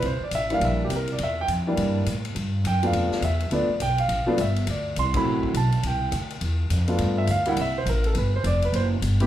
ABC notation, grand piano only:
X:1
M:4/4
L:1/8
Q:"Swing" 1/4=207
K:Gmix
V:1 name="Grand piano"
c d e f e G _B d | e g z6 | z2 g f3 e2 | d2 g f3 e2 |
d2 c' b3 a2 | g2 z6 | z e f ^f e c _B A | [_B=B] c d B c z3 |]
V:2 name="Grand piano"
z3 [E,G,_B,D]3 z2 | z3 [E,G,_B,D]3 z2 | z3 [F,A,B,D]3 z2 | [F,A,B,D] z4 [F,A,B,D] z2 |
z3 [^F,A,CE]3 z2 | z6 z [A,B,DF]- | [A,B,DF]2 z [G,_B,DE] z4 | z6 z [A,,B,CEG] |]